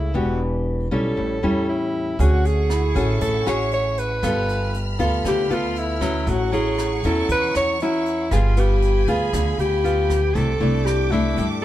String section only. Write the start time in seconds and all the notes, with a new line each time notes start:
2.20 G#4 E5 F#5 C#6
4.22 A3 B5 F6
6.28 F#5 C#6
8.31 F5 G#5 B5
10.36 A4 E5 D6